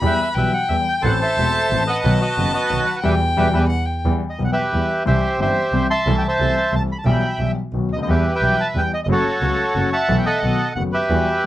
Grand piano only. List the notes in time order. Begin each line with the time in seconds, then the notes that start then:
0.01 E2 E3 G3 B3 G4
0.36 B1 B2 E3 G3 B3 G4
0.71 E2 E3 G3 B3 G4
1.04 A1 A2 E3 A3 C4 A4
1.38 E1 E2 E3 A3 C4 A4
1.71 A1 A2 E3 A3 C4 A4
2.04 B1 B2 D#3 F#3 B3 F#4
2.37 F#1 F#2 D#3 F#3 B3 F#4
2.70 B1 B2 D#3 F#3 B3 F#4
3.03 B2 E3 G3
3.37 B2 E3 G3
3.53 B2 E3 G3
4.05 E2 E3 G3 B3 G4
4.38 B1 B2 E3 G3 B3 G4
4.72 E2 E3 G3 B3 G4
5.05 C2 C3 E3 G3 C4 G4
5.40 G1 G2 E3 G3 C4 G4
5.73 C2 C3 E3 G3 C4 G4
6.07 C2 C3 E3 A3 C4 A4
6.39 C2 C3 E3 A3 C4 A4
6.72 C2 C3 E3 A3 C4 A4
7.06 B1 B2 E3 G3 B3 G4
7.39 B1 B2 E3 G3 B3 G4
7.74 B1 B2 D#3 F#3 B3 F#4
7.96 C#2 D2
8.03 D#2
8.07 E2 E3 G3 B3 G4
8.42 B1 B2 E3 G3 B3 G4
8.75 E2 E3 G3 B3 G4
9.09 F#2 C#3 F#3 A3 F#4
9.42 C#2 C#3 F#3 A3 F#4
9.75 F#2 C#3 F#3 A3 F#4
10.08 B1 B2 E3 A3 B3 F#4
10.43 B1 B2 D#3 A3 B3 F#4
10.76 F#1 F#2 D#3 A3 B3 F#4
11.10 E2 E3 G3 B3 F#4